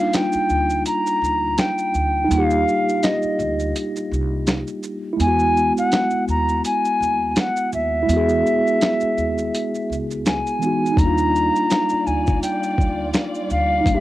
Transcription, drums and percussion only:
0.13 finger snap, snare, closed hi-hat, shaker
0.32 shaker
0.50 shaker
0.70 shaker
0.86 closed hi-hat, shaker
1.07 shaker
1.24 shaker
1.58 finger snap, snare, closed hi-hat, shaker
1.78 shaker
1.94 shaker
2.31 closed hi-hat, shaker
2.51 shaker
2.68 shaker
2.89 shaker
3.03 finger snap, snare, closed hi-hat, shaker
3.22 shaker
3.39 shaker
3.60 shaker
3.76 closed hi-hat, shaker
3.96 shaker
4.13 shaker
4.47 finger snap, snare, closed hi-hat, shaker
4.67 shaker
4.83 shaker
5.20 closed hi-hat, shaker
5.39 shaker
5.57 shaker
5.77 shaker
5.92 finger snap, snare, closed hi-hat, shaker
6.11 shaker
6.28 shaker
6.49 shaker
6.65 closed hi-hat, shaker
6.85 shaker
7.02 shaker
7.36 finger snap, snare, closed hi-hat, shaker
7.57 shaker
7.73 shaker
8.09 closed hi-hat, shaker
8.29 shaker
8.46 shaker
8.67 shaker
8.81 finger snap, snare, closed hi-hat, shaker
9.00 shaker
9.18 shaker
9.38 shaker
9.55 closed hi-hat, shaker
9.75 shaker
9.92 shaker
10.11 shaker
10.26 finger snap, snare, closed hi-hat, shaker
10.47 shaker
10.62 shaker
10.86 shaker
10.97 kick, closed hi-hat, shaker
11.18 shaker
11.36 shaker
11.56 shaker
11.71 finger snap, snare, closed hi-hat, shaker
11.89 shaker
12.07 shaker
12.27 kick, shaker
12.43 closed hi-hat, shaker
12.63 shaker
12.78 kick, shaker
13.14 finger snap, snare, closed hi-hat, shaker
13.35 shaker
13.50 shaker
13.86 kick, closed hi-hat, shaker

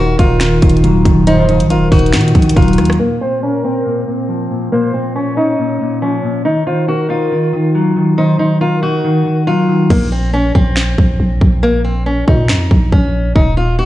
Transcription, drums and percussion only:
0.19 kick, closed hi-hat
0.40 finger snap, snare, closed hi-hat
0.62 kick, closed hi-hat
0.69 closed hi-hat
0.77 closed hi-hat
0.84 closed hi-hat
1.05 kick, closed hi-hat
1.27 closed hi-hat
1.49 closed hi-hat
1.60 closed hi-hat
1.70 closed hi-hat
1.92 kick, closed hi-hat, open hi-hat
1.99 closed hi-hat
2.06 closed hi-hat
2.13 finger snap, snare, closed hi-hat
2.21 closed hi-hat
2.28 closed hi-hat
2.35 kick, closed hi-hat
2.42 closed hi-hat
2.49 closed hi-hat
2.57 kick, closed hi-hat
2.62 closed hi-hat
2.68 closed hi-hat
2.73 closed hi-hat
2.78 cross-stick, closed hi-hat
2.85 closed hi-hat
2.90 cross-stick, closed hi-hat
9.90 kick, crash
10.55 kick
10.76 finger snap, snare
10.98 kick
11.41 kick
12.28 kick
12.48 finger snap, snare
12.71 kick
12.92 kick
13.36 kick

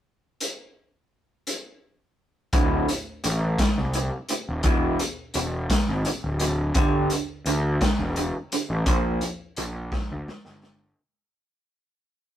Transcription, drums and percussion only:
0.40 closed hi-hat
1.47 closed hi-hat
2.53 kick, closed hi-hat
2.88 closed hi-hat
3.24 closed hi-hat
3.58 kick, snare, closed hi-hat
3.93 closed hi-hat
4.29 closed hi-hat
4.63 kick, closed hi-hat
4.99 closed hi-hat
5.34 closed hi-hat
5.70 kick, snare, closed hi-hat
6.05 closed hi-hat
6.39 closed hi-hat
6.75 kick, closed hi-hat
7.10 closed hi-hat
7.46 closed hi-hat
7.81 kick, snare, closed hi-hat
8.16 closed hi-hat
8.52 closed hi-hat
8.86 kick, closed hi-hat
9.21 closed hi-hat
9.56 closed hi-hat
9.92 kick, snare
10.28 snare
10.45 snare
10.63 snare

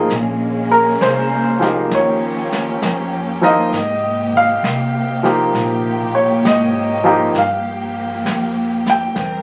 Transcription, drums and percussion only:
0.10 brush sweep, snare
1.01 snare, hi-hat pedal
1.62 snare
1.91 brush sweep, snare
2.52 snare
2.82 snare, hi-hat pedal
3.43 snare
3.73 brush sweep, snare
4.33 kick
4.64 snare, hi-hat pedal
5.25 snare
5.55 brush sweep, snare
6.45 snare, hi-hat pedal
7.35 brush sweep, snare
8.26 snare, hi-hat pedal
8.86 snare
9.16 brush sweep, snare

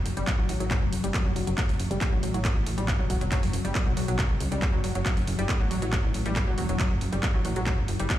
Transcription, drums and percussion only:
0.06 open hi-hat
0.17 closed hi-hat
0.27 kick, clap, closed hi-hat
0.49 open hi-hat
0.60 closed hi-hat
0.71 kick, clap, closed hi-hat
0.93 open hi-hat
1.04 closed hi-hat
1.14 kick, clap, closed hi-hat
1.36 open hi-hat
1.47 closed hi-hat
1.58 kick, clap, closed hi-hat
1.69 open hi-hat
1.80 open hi-hat
1.91 closed hi-hat
2.01 kick, clap, closed hi-hat
2.23 open hi-hat
2.34 closed hi-hat
2.45 kick, clap, closed hi-hat
2.66 open hi-hat
2.78 closed hi-hat
2.88 kick, clap, closed hi-hat
3.10 kick, open hi-hat
3.21 closed hi-hat
3.32 kick, clap, closed hi-hat
3.43 open hi-hat
3.53 open hi-hat
3.65 closed hi-hat
3.75 kick, clap, closed hi-hat
3.97 open hi-hat
4.08 closed hi-hat
4.19 kick, clap, closed hi-hat
4.40 open hi-hat
4.52 closed hi-hat
4.62 kick, clap, closed hi-hat
4.84 open hi-hat
4.95 closed hi-hat
5.06 kick, clap, closed hi-hat
5.17 open hi-hat
5.27 open hi-hat
5.39 closed hi-hat
5.49 kick, clap, closed hi-hat
5.71 open hi-hat
5.82 closed hi-hat
5.93 kick, clap, closed hi-hat
6.14 open hi-hat
6.26 closed hi-hat
6.36 kick, clap, closed hi-hat
6.58 open hi-hat
6.69 closed hi-hat
6.80 kick, clap, closed hi-hat
7.01 open hi-hat
7.13 closed hi-hat
7.23 kick, clap, closed hi-hat
7.45 open hi-hat
7.56 closed hi-hat
7.66 kick, clap, closed hi-hat
7.88 open hi-hat
8.00 closed hi-hat
8.10 kick, clap, closed hi-hat

